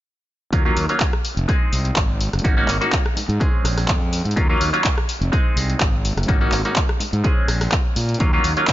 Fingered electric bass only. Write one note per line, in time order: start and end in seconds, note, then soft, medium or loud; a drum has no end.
0.53 0.70 D#2 medium
0.76 0.86 D#2 medium
1.37 1.45 F1 medium
1.73 1.90 C2 medium
1.97 2.28 G#1 medium
2.33 2.42 F#1 medium
2.45 2.62 G#1 medium
2.69 2.78 G#1 medium
3.17 muted fingered electric bass stroke soft
3.29 3.37 G#2 medium
3.64 3.90 A#1 medium
3.89 4.20 F2 medium
4.25 4.33 G#2 medium
4.37 4.54 D#2 medium
4.61 4.70 D#2 medium
5.21 5.29 F1 medium
5.56 5.74 C2 medium
5.81 6.12 G#1 medium
6.17 6.25 F#1 medium
6.29 6.46 G#1 medium
6.52 6.62 G#1 medium
7.00 muted fingered electric bass stroke soft
7.13 7.21 G#2 medium
7.48 7.66 A#1 medium
7.96 8.14 A#2 medium
8.20 8.38 D#2 medium
8.44 8.54 D#2 medium